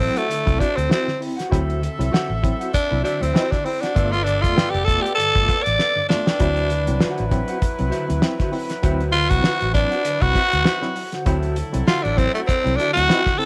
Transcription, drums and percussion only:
0.16 closed hi-hat
0.31 closed hi-hat
0.47 kick, closed hi-hat
0.60 kick, closed hi-hat
0.78 closed hi-hat
0.91 snare
1.08 snare
1.22 open hi-hat
1.39 snare, closed hi-hat
1.52 kick, closed hi-hat
1.70 closed hi-hat
1.83 closed hi-hat
2.01 closed hi-hat
2.14 snare
2.44 kick, closed hi-hat
2.61 closed hi-hat
2.74 kick, closed hi-hat
3.05 closed hi-hat
3.23 closed hi-hat
3.36 snare
3.52 kick, snare, closed hi-hat
3.66 open hi-hat
3.83 snare, closed hi-hat
3.96 kick, closed hi-hat
4.13 closed hi-hat
4.27 closed hi-hat
4.44 kick, closed hi-hat
4.58 snare
4.74 closed hi-hat
4.88 kick, closed hi-hat
5.06 closed hi-hat
5.19 closed hi-hat
5.35 kick, closed hi-hat
5.49 kick, closed hi-hat
5.66 closed hi-hat
5.79 snare
6.10 snare
6.27 snare
6.40 kick, closed hi-hat
6.57 closed hi-hat
6.70 closed hi-hat
6.87 closed hi-hat
7.00 snare
7.18 closed hi-hat
7.31 kick, closed hi-hat
7.48 closed hi-hat
7.62 kick, closed hi-hat
7.79 closed hi-hat
7.92 closed hi-hat
8.10 closed hi-hat
8.22 snare
8.39 kick, snare, closed hi-hat
8.53 open hi-hat
8.70 snare, closed hi-hat
8.83 kick, closed hi-hat
9.00 closed hi-hat
9.14 closed hi-hat
9.30 kick, closed hi-hat
9.44 snare
9.60 closed hi-hat
9.75 kick, closed hi-hat
9.92 closed hi-hat
10.05 closed hi-hat
10.21 kick, closed hi-hat
10.35 kick, closed hi-hat
10.52 closed hi-hat
10.65 snare
10.82 snare
10.96 open hi-hat
11.12 snare, closed hi-hat
11.26 kick, closed hi-hat
11.43 closed hi-hat
11.56 closed hi-hat
11.74 closed hi-hat
11.88 snare
12.05 closed hi-hat
12.18 kick, closed hi-hat
12.36 closed hi-hat
12.49 kick, closed hi-hat
12.67 closed hi-hat
12.79 closed hi-hat
12.97 closed hi-hat
13.10 snare
13.26 kick, snare, closed hi-hat
13.40 open hi-hat

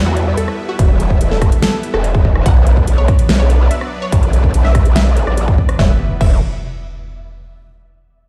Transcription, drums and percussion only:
0.17 closed hi-hat
0.37 closed hi-hat
0.48 cross-stick
0.79 kick, closed hi-hat
1.00 closed hi-hat
1.10 kick
1.21 closed hi-hat
1.31 snare
1.42 kick, cross-stick, closed hi-hat
1.52 closed hi-hat
1.62 snare, closed hi-hat
1.83 closed hi-hat
1.94 cross-stick
2.04 closed hi-hat
2.15 kick
2.25 kick
2.35 cross-stick
2.46 kick, closed hi-hat
2.67 closed hi-hat
2.77 kick
2.87 closed hi-hat
3.08 kick, cross-stick, closed hi-hat
3.19 closed hi-hat
3.29 snare, closed hi-hat
3.50 closed hi-hat
3.71 closed hi-hat
3.81 cross-stick
4.12 kick, closed hi-hat
4.23 closed hi-hat
4.33 closed hi-hat
4.44 kick
4.54 closed hi-hat
4.65 snare
4.75 kick, cross-stick, closed hi-hat
4.85 closed hi-hat
4.96 snare, closed hi-hat
5.17 closed hi-hat
5.27 cross-stick
5.37 closed hi-hat
5.48 kick
5.58 kick
5.69 cross-stick, closed hi-hat
5.79 kick, snare
6.21 kick, crash

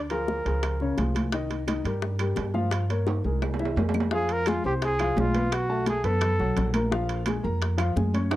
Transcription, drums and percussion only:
0.10 high bongo, high conga, high timbale
0.28 high bongo, high conga
0.46 high conga, high timbale
0.63 high bongo, high conga, high timbale, claves
0.80 high bongo, high conga
0.98 high bongo, low bongo, high conga, high timbale
1.15 high bongo, high conga, high timbale, claves
1.32 high bongo, high conga, high timbale
1.50 high bongo, high conga, high timbale
1.68 high bongo, high conga, high timbale, claves
1.85 high conga, high timbale
2.02 high bongo, high conga
2.19 high bongo, high conga, high timbale, claves
2.36 high bongo, low bongo, high conga, high timbale, low timbale
2.54 high bongo, high conga
2.71 high bongo, high timbale, claves
2.90 high bongo, high conga, high timbale
3.07 high bongo, high conga, high timbale
3.26 high conga
3.42 high bongo, high conga, low timbale, claves
3.54 low timbale
3.59 high bongo, high conga
3.65 low timbale
3.77 high conga, low timbale
3.89 low timbale
3.94 low bongo, high conga, claves
4.00 low timbale
4.11 high bongo, high conga
4.29 high conga, high timbale
4.46 high bongo, high conga, high timbale, claves
4.65 high bongo, high conga
4.82 high bongo, high conga, high timbale
4.99 high bongo, high conga, high timbale, claves
5.17 high bongo, low bongo, high conga, low timbale
5.34 high conga, high timbale
5.52 high bongo, high timbale, claves
5.69 high conga
5.86 high bongo, high conga, high timbale
6.04 high bongo, high conga, high timbale
6.21 high bongo, high conga, low conga, high timbale, claves
6.39 high bongo, high conga
6.57 high bongo, low bongo, high conga, high timbale
6.74 high conga, high timbale, claves
6.92 high bongo, high conga
7.09 high conga, high timbale
7.26 high bongo, high conga, high timbale, claves
7.44 high bongo, high conga
7.61 high bongo, high conga, high timbale
7.78 high bongo, high conga, high timbale, claves
7.97 high bongo, low bongo, high conga
8.14 high conga, high timbale
8.31 high bongo, high timbale, claves

